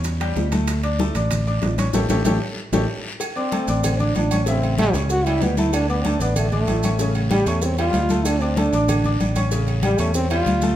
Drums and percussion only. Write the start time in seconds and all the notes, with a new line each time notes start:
0.04 high bongo, high conga, high timbale, long guiro, maracas
0.21 high bongo, high conga, high timbale, maracas
0.36 high bongo, low bongo, high conga, low timbale, short guiro, maracas
0.52 high bongo, high conga, high timbale, short guiro, maracas
0.68 high bongo, high conga, high timbale, long guiro, maracas
0.83 high conga, high timbale, maracas
0.99 high bongo, high conga, short guiro, maracas
1.15 high bongo, high conga, high timbale, short guiro, maracas
1.30 high bongo, high conga, low conga, high timbale, long guiro, maracas
1.47 high bongo, high conga, maracas
1.62 high bongo, low bongo, high conga, high timbale, low timbale, short guiro, maracas
1.78 high bongo, high conga, high timbale, short guiro, maracas
1.93 high bongo, high conga, high timbale, long guiro, maracas
2.09 high bongo, high conga, high timbale, long guiro, maracas
2.25 high bongo, high conga, high timbale, long guiro, maracas
2.73 high bongo, high conga, high timbale, long guiro, maracas
3.20 cowbell, high conga, low agogo, long guiro, maracas
3.36 high conga, maracas
3.52 cowbell, high conga, low agogo, short guiro, maracas
3.68 cowbell, high conga, short guiro, maracas
3.83 cowbell, high conga, low conga, low agogo, long guiro, maracas
4.00 high conga, low conga, maracas
4.15 cowbell, high conga, low timbale, low agogo, short guiro, maracas
4.31 high conga, low agogo, short guiro, maracas
4.46 cowbell, high conga, long guiro, maracas
4.63 high conga, low agogo, maracas
4.78 cowbell, high conga, low agogo, short guiro, maracas
4.93 cowbell, high conga, low agogo, short guiro, maracas
5.09 cowbell, long guiro, maracas
5.26 cowbell, high conga, low agogo, maracas
5.41 cowbell, high conga, low timbale, low agogo, short guiro, maracas
5.57 cowbell, high conga, short guiro, maracas
5.73 cowbell, low agogo, long guiro, maracas
5.89 high conga, maracas
6.05 cowbell, high conga, low agogo, short guiro, maracas
6.20 cowbell, high conga, short guiro, maracas
6.36 cowbell, high conga, low conga, low agogo, long guiro, maracas
6.52 high conga, low conga, maracas
6.67 cowbell, high conga, low timbale, low agogo, short guiro, maracas
6.83 high conga, low agogo, short guiro, maracas
6.99 cowbell, high conga, long guiro, maracas
7.15 high conga, low agogo, maracas
7.31 cowbell, high conga, low agogo, short guiro, maracas
7.46 cowbell, high conga, low agogo, short guiro, maracas
7.61 cowbell, high conga, long guiro, maracas
7.78 cowbell, high conga, low agogo, maracas
7.93 cowbell, high conga, low timbale, low agogo, short guiro, maracas
8.09 cowbell, high conga, short guiro, maracas
8.25 cowbell, high conga, low agogo, long guiro, maracas
8.41 high conga, maracas
8.57 cowbell, high conga, low agogo, short guiro, maracas
8.73 cowbell, high conga, short guiro, maracas
8.88 cowbell, high conga, low conga, low agogo, long guiro, maracas
9.04 high conga, low conga, maracas
9.20 cowbell, high conga, low agogo, short guiro, maracas
9.35 high conga, low agogo, short guiro, maracas
9.51 cowbell, high conga, long guiro, maracas
9.67 high conga, low agogo, maracas
9.83 cowbell, high conga, low agogo, short guiro, maracas
9.98 cowbell, high conga, low agogo, short guiro, maracas
10.14 cowbell, high conga, long guiro, maracas
10.30 cowbell, high conga, low agogo, maracas
10.46 cowbell, high conga, low agogo, short guiro, maracas
10.61 cowbell, high conga, short guiro, maracas